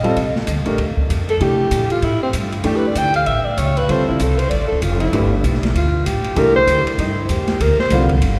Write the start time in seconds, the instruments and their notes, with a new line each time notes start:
Already playing: upright bass A#1, alto saxophone D#5
0.03 grand piano G3 C4 F4 A4, ride
0.16 upright bass C2, kick, ride
0.36 snare
0.47 upright bass D2, kick, hi-hat pedal, ride
0.58 upright bass C2
0.66 upright bass A1, grand piano A3 D4 G4 A#4, ride
0.78 upright bass D#2, kick, ride
0.97 muted upright bass stroke, kick
1.10 upright bass F2, kick, hi-hat pedal, ride
1.29 alto saxophone A4, ride
1.39 upright bass C3, grand piano E3 A3 D4 G4, alto saxophone G4, kick, ride
1.71 upright bass A#2, kick, hi-hat pedal, ride
1.90 alto saxophone F4, ride
2.02 upright bass A2, alto saxophone E4, kick, ride
2.23 alto saxophone C4
2.33 upright bass G2, kick, hi-hat pedal, ride
2.52 ride
2.64 upright bass E2, grand piano E3 A3 D4 G4, alto saxophone G4, kick, ride
2.76 alto saxophone B4
2.84 alto saxophone D5, muted upright bass stroke
2.95 upright bass D2, alto saxophone G5, kick, hi-hat pedal, ride
3.14 alto saxophone F5, ride
3.26 upright bass A1, alto saxophone E5, kick, ride
3.45 alto saxophone D5, muted upright bass stroke
3.57 upright bass C#2, alto saxophone C#5, kick, hi-hat pedal, ride
3.77 alto saxophone B4, ride
3.88 upright bass D2, grand piano G3 C4 F4 A4, alto saxophone C5, kick, ride
4.00 upright bass C2
4.08 upright bass A1, alto saxophone E4
4.19 upright bass C2, alto saxophone A4, kick, hi-hat pedal, ride
4.38 alto saxophone C5, ride
4.50 upright bass A1, alto saxophone D5, kick, ride
4.61 upright bass F1
4.67 alto saxophone A4
4.72 upright bass D1
4.82 upright bass F1, alto saxophone F4, kick, hi-hat pedal, ride
5.00 alto saxophone E4, ride
5.12 upright bass G1, grand piano A3 D4 G4 B4, kick, ride
5.44 upright bass B1, kick, hi-hat pedal, ride
5.55 snare
5.63 snare, ride
5.74 upright bass D2, alto saxophone F4, kick, ride
6.06 upright bass A1, alto saxophone G4, kick, hi-hat pedal, ride
6.24 ride
6.35 upright bass C2, grand piano E3 A3 D4 G4, alto saxophone A#4, kick, ride
6.56 alto saxophone C5
6.67 upright bass D2, kick, hi-hat pedal, ride
6.85 muted upright bass stroke, ride
6.98 upright bass G2, alto saxophone E4, kick, ride
7.29 upright bass E2, alto saxophone G4, kick, hi-hat pedal, ride
7.48 snare, ride
7.60 upright bass D2, alto saxophone A#4, kick, ride
7.79 alto saxophone C5, muted upright bass stroke, snare
7.90 upright bass C2, grand piano D3 G3 C4 F4, kick, snare, hi-hat pedal, ride
8.09 kick, ride
8.22 upright bass G1, kick, ride